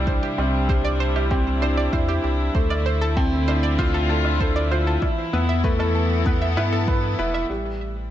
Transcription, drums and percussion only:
0.07 kick medium
0.39 low woodblock medium
0.69 kick loud
1.16 low woodblock medium
1.31 kick medium
1.92 kick loud
1.92 low woodblock medium
2.55 kick medium
2.71 low woodblock medium
3.17 kick medium
3.48 low woodblock medium
3.79 kick medium
4.25 low woodblock medium
4.40 kick medium
5.02 kick medium
5.02 low woodblock medium
5.64 kick loud
5.79 low woodblock medium
6.26 kick loud
6.57 low woodblock medium
6.88 kick loud
7.34 low woodblock medium

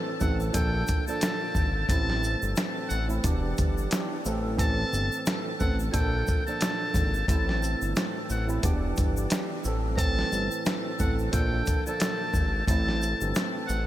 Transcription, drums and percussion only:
0.20 kick medium
0.20 shaker medium
0.20 shaker soft
0.40 shaker soft
0.54 kick loud
0.54 closed hi-hat medium
0.54 shaker medium
0.87 closed hi-hat medium
0.87 shaker medium
0.89 kick loud
0.89 shaker medium
1.08 shaker medium
1.21 snare loud
1.21 closed hi-hat medium
1.21 shaker medium
1.55 kick loud
1.55 shaker medium
1.89 kick loud
1.89 closed hi-hat loud
1.89 shaker medium
2.10 snare soft
2.23 shaker soft
2.23 shaker medium
2.42 shaker medium
2.56 snare loud
2.56 closed hi-hat medium
2.56 shaker medium
2.90 shaker medium
2.90 shaker soft
3.10 shaker soft
3.24 kick loud
3.24 closed hi-hat medium
3.24 shaker medium
3.57 kick loud
3.57 closed hi-hat medium
3.57 shaker medium
3.78 shaker medium
3.91 snare loud
3.91 closed hi-hat medium
3.91 shaker medium
4.25 shaker medium
4.59 kick loud
4.59 closed hi-hat medium
4.59 shaker medium
4.93 shaker soft
4.93 shaker medium
5.12 shaker medium
5.26 snare loud
5.26 closed hi-hat medium
5.26 shaker medium
5.60 kick medium
5.60 shaker medium
5.60 shaker soft
5.79 shaker soft
5.94 kick loud
5.94 closed hi-hat loud
5.94 shaker medium
6.27 kick loud
6.27 shaker medium
6.47 shaker medium
6.61 snare loud
6.61 closed hi-hat medium
6.61 shaker medium
6.94 kick loud
6.94 closed hi-hat medium
6.94 shaker medium
7.14 shaker soft
7.28 kick loud
7.28 closed hi-hat medium
7.28 shaker medium
7.49 snare soft
7.62 shaker soft
7.62 shaker medium
7.82 shaker medium
7.96 snare loud
7.96 closed hi-hat medium
7.96 shaker medium
8.30 shaker medium
8.30 shaker soft
8.49 shaker soft
8.63 kick loud
8.63 closed hi-hat loud
8.63 shaker medium
8.96 kick loud
8.96 closed hi-hat medium
8.96 shaker medium
9.17 shaker medium
9.30 snare loud
9.30 closed hi-hat medium
9.30 shaker medium
9.64 shaker medium
9.98 kick loud
9.98 closed hi-hat medium
9.98 shaker medium
10.19 snare soft
10.32 shaker soft
10.32 shaker medium
10.51 shaker medium
10.65 snare loud
10.65 closed hi-hat medium
10.65 shaker medium
10.99 kick medium
10.99 shaker medium
10.99 shaker soft
11.19 shaker soft
11.33 kick loud
11.33 closed hi-hat medium
11.33 shaker medium
11.66 kick loud
11.66 closed hi-hat medium
11.66 shaker medium
11.87 shaker medium
12.00 snare loud
12.00 closed hi-hat medium
12.00 shaker medium
12.34 kick loud
12.34 shaker medium
12.68 kick loud
12.68 closed hi-hat medium
12.68 shaker medium
12.88 snare soft
13.02 shaker soft
13.02 shaker medium
13.21 shaker medium
13.35 snare loud
13.35 closed hi-hat medium
13.35 shaker medium
13.69 shaker medium
13.69 shaker soft

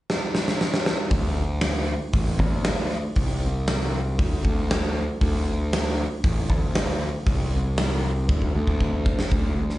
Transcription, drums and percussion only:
0.10 snare medium
0.35 snare medium
0.48 snare medium
0.61 snare medium
0.74 snare medium
0.86 snare loud
1.11 kick loud
1.11 open hi-hat medium
1.61 snare loud
1.61 open hi-hat medium
2.13 kick loud
2.13 open hi-hat medium
2.39 kick medium
2.64 snare loud
2.64 open hi-hat medium
2.91 snare soft
3.16 kick loud
3.16 open hi-hat medium
3.67 snare loud
3.67 open hi-hat medium
4.19 kick loud
4.19 open hi-hat medium
4.45 kick medium
4.71 snare loud
4.71 open hi-hat medium
5.21 kick loud
5.21 open hi-hat medium
5.73 snare loud
5.73 open hi-hat medium
6.24 kick loud
6.24 open hi-hat medium
6.50 kick medium
6.75 snare loud
6.75 open hi-hat medium
7.26 kick loud
7.26 open hi-hat medium
7.78 snare loud
7.78 open hi-hat medium
8.29 kick loud
8.42 kick medium
8.67 kick medium
8.81 kick medium
9.06 kick loud
9.19 snare medium
9.31 kick medium
9.31 open hi-hat soft
9.70 snare soft

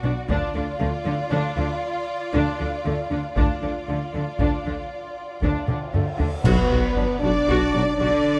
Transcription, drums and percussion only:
0.29 taiko soft
3.36 taiko medium
4.39 taiko medium
5.43 taiko soft
5.68 taiko mid medium
5.94 taiko low-mid medium
6.20 taiko low medium
6.45 concert bass drum medium
6.45 taiko medium
6.45 crash medium
6.97 taiko low-mid medium

